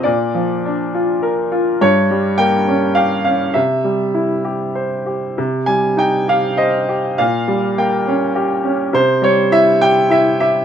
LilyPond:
\new Staff \with { instrumentName = "Upright piano" } { \time 3/4 \key c \phrygian \tempo 4 = 102 << { d''4. r4. | des''4 g''4 f''8 f''8 | e''4. r4. | r8 aes''8 g''8 f''8 ees''4 |
f''4 g''4. r8 | c''8 des''8 e''8 g''8 e''8 e''8 | } \\ { bes,8 f8 d'8 f'8 bes'8 f'8 | g,8 g8 bes8 des'8 g'8 des'8 | c8 g8 e'8 g'8 c''8 g'8 | c8 g8 ees'8 g'8 c''8 g'8 |
bes,8 g8 bes8 des'8 g'8 des'8 | c8 g8 e'8 g'8 e'8 g'8 | } >> }